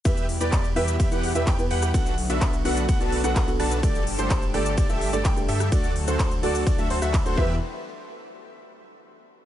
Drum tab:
RD |x---x---x---x---|x---x---x---x---|x---x---x---x---|x---x---x---x---|
HH |xxoxxxoxxxoxxxox|xxoxxxoxxxoxxxox|xxoxxxoxxxoxxxox|xxoxxxooxxoxxx--|
SH |xx-xxx-xxx-xxx-x|xx-xxx-xxx-xxx-x|xx-xxx-xxx-xxx-x|xx-xxx-xxx-xxx--|
CP |----x-------x---|----x-------x---|----x-------x---|----x-------x---|
SD |------r--------r|-----------r--r-|------r--------r|-----------r----|
BD |o---o---o---o---|o---o---o---o---|o---o---o---o---|o---o---o---o-o-|

RD |----------------|
HH |----------------|
SH |----------------|
CP |----------------|
SD |----------------|
BD |----------------|